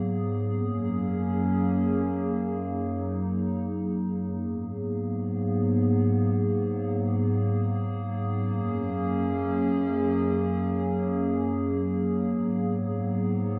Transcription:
ambient pad
Already playing: G#2 F#3 A#3 B3 G#4
0.47 F#2 F#3 A#3 C#4
2.44 D#4
4.40 G#2 F#3 A#3 B3 G#4
8.34 F#2 C#4
12.27 G#2 B3

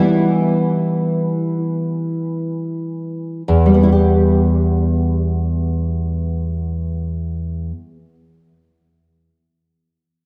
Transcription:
nylon-string guitar
Already playing: E3 G3 B3 E4
3.48 E2
3.66 G3
3.74 B3
3.83 E4
3.92 G4

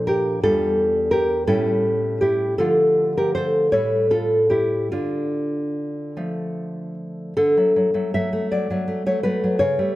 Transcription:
nylon-string guitar
Already playing: A#2 F3 D4
0.07 G4 A#4
0.43 E2 G3 D4 F4 A4
1.11 G4 A#4
1.47 A2 G3 C#4 E4 A4
2.21 E4 G4
2.58 D3 F3 A3 F4 A4
3.17 G4 A#4
3.35 A4 C5
3.72 A2 G3 A3 A4 C#5
4.11 F4 A4
4.50 E4 G4
4.92 D3 D4 F4
6.17 F3 A3
7.37 D3 A4
7.57 F#3 A3
7.76 F#3
7.94 F#3 A3
8.14 F#3 A3 E5
8.33 A3
8.52 F#3 D5
8.70 F#3 A3
8.88 A3
9.06 F#3 A3 C#5
9.23 F#3 A3 B4
9.44 F#3
9.59 C#3 C#5
9.79 G3 A3

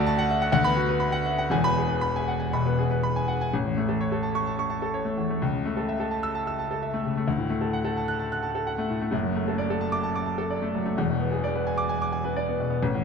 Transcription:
grand piano
Already playing: D2 A3 F#4 D5 A5
0.07 A5
0.18 F#5
0.31 E5
0.42 F#5
0.52 D2 F#5
0.64 B3 B5
0.76 F#4
0.89 B4
1.00 B5
1.12 F#5
1.26 E5
1.39 F#5
1.50 E1 E2 G#5
1.64 B3 B5
1.77 G#4
1.89 B4
2.01 B5
2.16 G#5
2.28 F#5
2.40 G#5
2.53 B2 B5
2.66 B3 B4
2.79 G#4
2.91 B4
3.03 B5
3.16 G#5
3.28 F#5
3.41 G#5
3.54 A1
3.65 E2
3.77 A3
3.89 A4
4.01 C#5
4.12 A4
4.23 A5
4.35 C#6
4.47 A5
4.59 C#6
4.70 A5
4.82 A4
4.94 C#5
5.05 A3
5.17 E2
5.30 A3
5.42 C#2
5.53 C#3
5.65 A3
5.77 A4
5.89 E5
6.00 A4
6.11 A5
6.23 E6
6.35 A5
6.47 E6
6.59 A5
6.71 A4
6.82 E5
6.94 A3
7.05 C#3
7.17 A3
7.28 D2
7.38 A2
7.50 A3
7.61 A4
7.73 F#5
7.85 A4
7.97 A5
8.08 F#6
8.19 A5
8.32 F#6
8.43 A5
8.55 A4
8.67 F#5
8.78 A3
8.90 A2
9.02 A3
9.11 F#1 F#2
9.24 F#3
9.35 A3
9.48 A4
9.58 D5
9.70 A4
9.81 A5
9.92 D6
10.03 A5
10.15 D6
10.26 A5
10.38 A4
10.50 D5
10.62 A3
10.75 F#3
10.86 A3
10.97 E1 E2
11.09 B2
11.20 B3
11.32 G#4
11.44 D5
11.55 B4
11.67 G#5
11.78 D6
11.89 G#5
12.02 D6
12.12 G#5
12.24 B4
12.36 D5
12.48 B3
12.60 B2
12.70 B3
12.83 A1
12.95 E2

